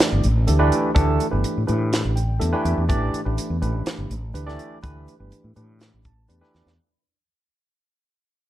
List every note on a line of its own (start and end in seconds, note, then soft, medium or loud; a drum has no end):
0.00 0.26 E3 medium
0.00 0.26 A3 medium
0.00 0.26 D4 medium
0.00 0.26 G4 medium
0.00 0.26 D5 medium
0.00 snare loud
0.00 closed hi-hat medium
0.12 0.23 G1 medium
0.24 0.46 A1 medium
0.24 closed hi-hat soft
0.37 0.42 G4 soft
0.37 0.42 B4 soft
0.47 0.70 D2 medium
0.47 0.58 E3 medium
0.47 0.58 A3 medium
0.47 0.58 D4 medium
0.47 0.58 G4 medium
0.47 0.58 A4 medium
0.47 closed hi-hat medium
0.59 0.90 E3 medium
0.59 0.90 A3 medium
0.59 0.90 D4 medium
0.59 0.90 G4 medium
0.59 0.90 B4 loud
0.72 closed hi-hat medium
0.95 1.18 D2 medium
0.95 1.26 E3 medium
0.95 1.26 A3 medium
0.95 1.26 D4 medium
0.95 1.26 G4 medium
0.95 1.26 A4 loud
0.95 kick medium
0.95 closed hi-hat medium
1.20 closed hi-hat soft
1.31 1.43 G1 medium
1.31 1.62 E3 medium
1.31 1.62 A3 medium
1.31 1.62 D4 medium
1.31 1.62 G4 medium
1.31 1.62 B4 medium
1.44 closed hi-hat medium
1.57 1.68 A2 medium
1.67 2.02 A2 medium
1.67 2.19 E3 medium
1.67 2.19 A3 medium
1.67 2.19 D4 medium
1.67 2.19 G4 medium
1.67 2.19 B4 medium
1.67 closed hi-hat soft
1.93 snare medium
1.93 closed hi-hat medium
2.05 2.38 A1 medium
2.16 2.39 G5 soft
2.16 closed hi-hat soft
2.28 2.34 G4 soft
2.28 2.34 D5 soft
2.40 2.53 E2 medium
2.40 2.51 E3 medium
2.40 2.51 A3 medium
2.40 2.51 D4 medium
2.40 2.51 G4 medium
2.40 2.51 A4 medium
2.40 2.63 E5 medium
2.40 closed hi-hat medium
2.53 2.84 E3 loud
2.53 2.84 A3 medium
2.53 2.84 D4 medium
2.53 2.84 G4 medium
2.53 2.83 B4 medium
2.65 2.76 E2 medium
2.65 2.88 D5 medium
2.65 closed hi-hat medium
2.78 2.91 E2 medium
2.89 3.12 A1 medium
2.89 3.20 E3 medium
2.89 3.20 A3 medium
2.89 3.20 D4 medium
2.89 3.20 G4 medium
2.89 3.20 D5 loud
2.89 kick medium
2.89 closed hi-hat medium
3.14 closed hi-hat medium
3.25 3.37 A1 medium
3.25 3.56 E3 medium
3.25 3.56 A3 medium
3.25 3.56 D4 medium
3.25 3.56 G4 medium
3.25 3.56 B4 medium
3.38 closed hi-hat medium
3.50 3.61 E2 medium
3.62 3.84 A1 medium
3.62 4.13 E3 medium
3.62 4.13 A3 medium
3.62 4.13 D4 medium
3.62 4.13 G4 medium
3.62 4.13 B4 medium
3.62 closed hi-hat soft
3.86 snare medium
3.86 closed hi-hat medium
3.98 4.09 G1 medium
4.10 4.32 A1 medium
4.10 closed hi-hat medium
4.23 4.28 G4 soft
4.23 4.28 A4 soft
4.34 4.57 D2 medium
4.34 4.45 E3 medium
4.34 4.45 A3 medium
4.34 4.45 D4 medium
4.34 4.45 G4 medium
4.34 4.45 B4 medium
4.34 closed hi-hat medium
4.46 4.77 E3 medium
4.46 4.78 A3 medium
4.46 4.78 D4 medium
4.46 4.78 G4 medium
4.46 4.78 D5 loud
4.46 snare soft
4.59 closed hi-hat soft
4.83 5.06 D2 medium
4.83 5.14 E3 medium
4.83 5.14 A3 medium
4.83 5.14 D4 medium
4.83 5.14 G4 medium
4.83 5.14 B4 medium
4.83 kick medium
4.83 closed hi-hat medium
5.08 closed hi-hat soft
5.20 5.31 G1 medium
5.20 5.51 E3 medium
5.20 5.51 A3 medium
5.20 5.51 D4 medium
5.20 5.51 G4 medium
5.20 5.51 B4 medium
5.32 closed hi-hat medium
5.44 5.55 A2 medium
5.56 5.90 A2 medium
5.56 6.08 E3 medium
5.56 6.08 A3 medium
5.56 6.08 D4 medium
5.56 6.08 G4 medium
5.56 6.08 B4 medium
5.56 closed hi-hat soft
5.81 snare medium
5.81 closed hi-hat medium
5.94 6.27 A1 medium
6.05 6.28 A5 medium
6.05 kick medium
6.05 closed hi-hat soft
6.17 6.23 G4 soft
6.17 6.23 B4 soft
6.28 6.41 E2 medium
6.28 6.39 E3 medium
6.28 6.40 A3 medium
6.28 6.39 D4 medium
6.28 6.40 G4 medium
6.28 6.39 B4 medium
6.28 6.74 D5 medium
6.28 closed hi-hat medium
6.41 6.72 E3 medium
6.41 6.72 A3 medium
6.41 6.72 D4 medium
6.41 6.72 G4 medium
6.41 6.72 B4 medium
6.41 snare soft
6.55 6.66 E2 medium
6.55 snare soft
6.66 6.77 E2 medium
6.66 snare medium